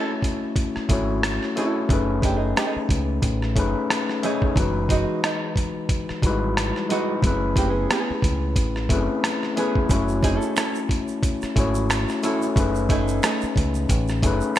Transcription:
Already playing: tine electric piano A3 C#4 E4 F#4 C#5, nylon-string guitar C#4 E4 A4
0.22 kick, closed hi-hat
0.56 kick, closed hi-hat
0.76 muted fingered electric bass stroke, cross-stick
0.89 fingered electric bass G#1, tine electric piano A3 C#4 E4 F#4, kick, closed hi-hat
0.93 tine electric piano C#5
1.23 muted nylon-string guitar stroke, cross-stick, closed hi-hat
1.43 cross-stick
1.56 tine electric piano A3 C#4 E4 F#4, nylon-string guitar C#4 E4 A4, closed hi-hat
1.60 tine electric piano C#5
1.89 fingered electric bass F#1, tine electric piano A3 C#4 D#4 G#4, kick, closed hi-hat
1.93 tine electric piano B4
2.22 nylon-string guitar G#3 D4 G4, kick, closed hi-hat
2.36 nylon-string guitar A3 D#4 G#4
2.56 nylon-string guitar A3 D#4 G#4, cross-stick, closed hi-hat
2.76 muted fingered electric bass stroke
2.89 fingered electric bass C#2, kick, closed hi-hat
3.22 fingered electric bass A1, kick, closed hi-hat
3.42 cross-stick
3.55 fingered electric bass F#1, tine electric piano A3 C#4 D#4 G#4, kick, closed hi-hat
3.60 tine electric piano B4
3.90 muted nylon-string guitar stroke, cross-stick, closed hi-hat
4.09 cross-stick
4.22 tine electric piano A3 C#4 D#4 G#4, nylon-string guitar A3 D#4 G#4, closed hi-hat
4.27 tine electric piano C#5
4.42 kick
4.55 fingered electric bass F#1, tine electric piano E3 G#3 D#4 F#4, kick, closed hi-hat
4.60 tine electric piano B4
4.89 nylon-string guitar G#3 D#4 F#4, kick, closed hi-hat
5.23 nylon-string guitar G#3 D#4 F#4, cross-stick, closed hi-hat
5.56 kick, closed hi-hat
5.89 kick, closed hi-hat
6.09 muted fingered electric bass stroke, cross-stick
6.22 fingered electric bass G#1, tine electric piano G3 D#4 E4 F#4, kick, closed hi-hat
6.27 tine electric piano G#3 B4
6.57 muted nylon-string guitar stroke, cross-stick, closed hi-hat
6.76 cross-stick
6.89 tine electric piano G#3 D#4 E4 F#4, nylon-string guitar G#3 D#4 F#4, closed hi-hat
6.93 tine electric piano B4
7.23 fingered electric bass F#1, tine electric piano A3 C4 E4 G#4, kick, closed hi-hat
7.27 tine electric piano C#4 B4
7.56 nylon-string guitar A#3 C4 G4, kick, closed hi-hat
7.69 nylon-string guitar B3 C#4 G#4
7.90 nylon-string guitar B3 C#4 G#4, cross-stick, closed hi-hat
8.10 muted fingered electric bass stroke
8.22 fingered electric bass C#2, kick, closed hi-hat
8.56 fingered electric bass A1, kick, closed hi-hat
8.76 cross-stick
8.89 fingered electric bass F#1, tine electric piano A3 C4 E4 G#4, kick, closed hi-hat
8.93 tine electric piano C#4 B4
9.24 muted nylon-string guitar stroke, cross-stick, closed hi-hat
9.43 cross-stick
9.56 tine electric piano A3 C#4 E4 G#4, nylon-string guitar B3 C#4 G#4, closed hi-hat
9.60 tine electric piano B4
9.75 kick
9.89 fingered electric bass F#1, tine electric piano G#3 C#4 E4 F#4, kick, closed hi-hat, shaker
9.93 tine electric piano A3 C#5
10.08 shaker
10.22 nylon-string guitar C4 D#4 G#4, kick, closed hi-hat
10.35 nylon-string guitar C#4 E4 A4
10.42 shaker
10.56 nylon-string guitar C#4 E4 A4, finger snap, cross-stick, closed hi-hat, shaker
10.75 shaker
10.89 kick, closed hi-hat
11.08 shaker
11.23 kick, closed hi-hat, shaker
11.42 muted fingered electric bass stroke, cross-stick, shaker
11.56 fingered electric bass G#1, tine electric piano A3 C#4 E4 F#4, kick, closed hi-hat, shaker
11.60 tine electric piano C#5
11.75 shaker
11.90 finger snap, muted nylon-string guitar stroke, cross-stick, closed hi-hat, shaker
12.09 cross-stick, shaker
12.23 tine electric piano A3 C#4 E4 F#4, nylon-string guitar C#4 E4 A4, closed hi-hat, shaker
12.27 tine electric piano A4
12.42 shaker
12.56 fingered electric bass F#1, tine electric piano A3 C#4 D#4 G#4, kick, closed hi-hat, shaker
12.60 tine electric piano B4
12.75 shaker
12.89 nylon-string guitar A3 D#4 G#4, kick, closed hi-hat
13.08 shaker
13.23 nylon-string guitar A3 D#4 G#4, finger snap, cross-stick, closed hi-hat, shaker
13.41 muted fingered electric bass stroke, shaker
13.56 fingered electric bass C#2, kick, closed hi-hat
13.74 shaker
13.89 fingered electric bass A1, kick, closed hi-hat, shaker
14.08 cross-stick, shaker
14.23 fingered electric bass F#1, tine electric piano A3 C#4 D#4 G#4, kick, closed hi-hat, shaker
14.27 tine electric piano B4
14.41 shaker
14.56 finger snap, shaker

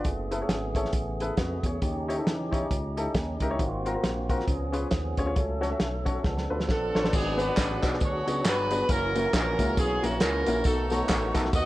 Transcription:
Already playing: tonewheel organ B3
0.04 analog synth bass F#1, tonewheel organ C#3 A3 G#4, kick, closed hi-hat
0.31 grand piano E4 G#4 A4 B4, closed hi-hat
0.41 grand piano E4 G#4 A4 C#5
0.49 analog synth bass G#1, snare, closed hi-hat
0.75 grand piano E4 G#4 A4 C#5, kick, closed hi-hat
0.85 snare
0.93 analog synth bass A1, kick, closed hi-hat
1.20 grand piano E4 G#4 A4 B4, closed hi-hat
1.37 analog synth bass F2, grand piano F#4 B4, kick, snare, closed hi-hat
1.63 analog synth bass E2, grand piano G#4 C#5, kick, closed hi-hat
1.82 analog synth bass D#2, grand piano D#3, tonewheel organ C#4 D#4 G4, kick, closed hi-hat
2.08 grand piano D#4 E4 G4 C#5, closed hi-hat
2.17 grand piano D#4 E4 G4 A4
2.26 analog synth bass E2, snare, closed hi-hat
2.51 grand piano D#4 E4 G4 C#5, kick, closed hi-hat
2.71 analog synth bass C#2, kick, closed hi-hat
2.97 grand piano D#4 E4 G4 A4, closed hi-hat
3.14 analog synth bass D#2, kick, snare, closed hi-hat
3.40 analog synth bass C#2, grand piano D#4 E4 G4 A#4, kick, closed hi-hat
3.50 grand piano D#4 E4 G4 C#5
3.59 analog synth bass G#1, grand piano G#2, tonewheel organ A#3 C4 F4 F#4, kick, closed hi-hat
3.85 grand piano C4 F4 F#4 A#4, closed hi-hat
3.94 grand piano C4 F4 F#4 A#4
4.03 analog synth bass A#1, snare, closed hi-hat
4.29 grand piano C4 F4 F#4 A#4, kick, closed hi-hat
4.40 snare
4.47 analog synth bass C#2, grand piano C#3, tonewheel organ F3 B3 C#4 G#4, kick, closed hi-hat
4.72 grand piano C#4 F4 G#4 B4, closed hi-hat
4.91 analog synth bass D#2, kick, snare, closed hi-hat
5.17 analog synth bass D2, grand piano C#4 F4 G#4 C#5, kick, closed hi-hat
5.26 grand piano C#4 F4 G#4 C#5
5.35 analog synth bass C#2, grand piano C#3, tonewheel organ F#3 A3 A4, kick, closed hi-hat
5.61 grand piano C#4 F#4 A4 C#5, snare, closed hi-hat
5.70 grand piano C#4 F#4 A4 E5
5.80 analog synth bass B1, snare, closed hi-hat
6.05 grand piano C#4 F#4 A4 C#5, kick, closed hi-hat
6.23 analog synth bass C#2, grand piano C#3, tonewheel organ F3 B3 D4 A4, kick, snare
6.37 snare
6.50 analog synth bass D2, grand piano D4 F4 A4 B4
6.60 snare
6.68 analog synth bass A#1, saxophone section D4 F4 A4, kick, snare
6.95 analog synth bass A1, grand piano D4 F4 A4 C#5, snare
7.03 grand piano D4 F4 A4 B4, snare
7.12 analog synth bass G#1, grand piano G#2, tonewheel organ F#3 B3 D4 G#4, saxophone section B3 D4 G#4, kick, crash, tambourine
7.37 grand piano B3 D4 F#4 G#4 B4, saxophone section D4 F#4 B4, closed hi-hat, tambourine
7.57 analog synth bass A1, kick, snare, clap, closed hi-hat, tambourine
7.82 analog synth bass B1, grand piano B3 D4 F#4 G#4 B4, kick, clap, closed hi-hat, tambourine
7.94 snare
8.01 analog synth bass D2, saxophone section F#4 C#5, kick, closed hi-hat, tambourine
8.27 analog synth bass C#2, grand piano B3 D4 F#4 G#4 C#5, closed hi-hat, tambourine
8.45 analog synth bass G1, saxophone section D4 F#4 B4, snare, clap, closed hi-hat, tambourine
8.71 grand piano B3 D4 F#4 G#4 B4, closed hi-hat, tambourine
8.89 analog synth bass F#1, tonewheel organ E3 A#3 C#4 F#4, saxophone section C#4 E4 A#4, kick, closed hi-hat, tambourine
9.15 grand piano A#3 C#4 E4 F#4 A#4, closed hi-hat, tambourine
9.33 analog synth bass A#1, saxophone section C#4 E4 A#4, kick, snare, clap, closed hi-hat, tambourine
9.59 analog synth bass C#2, grand piano A#3 C#4 E4 F#4 A#4, kick, closed hi-hat, tambourine
9.77 analog synth bass B1, saxophone section C#4 E4 G#4, kick, closed hi-hat, tambourine
10.03 analog synth bass A#1, grand piano A#3 C#4 E4 F#4 A#4, saxophone section F#4, closed hi-hat, tambourine
10.20 analog synth bass C#2, saxophone section C#4 E4 A#4, snare, clap, closed hi-hat, tambourine
10.46 analog synth bass A#1, grand piano A#3 C#4 E4 F#4 A#4, closed hi-hat, tambourine
10.64 analog synth bass B1, grand piano B2, tonewheel organ D#3 A3 B3, saxophone section D#4 F#4 A4, kick, closed hi-hat, tambourine
10.90 grand piano A3 B3 D#4 F#4 A4, saxophone section F#4 A4 C#5, snare, closed hi-hat, tambourine
11.09 analog synth bass A1, kick, snare, clap, closed hi-hat, tambourine
11.34 analog synth bass B1, grand piano A3 B3 D#4 F#4 A4, kick, clap, closed hi-hat, tambourine
11.45 snare
11.53 analog synth bass D#2, saxophone section F#4 A4 D#5, kick, closed hi-hat, tambourine

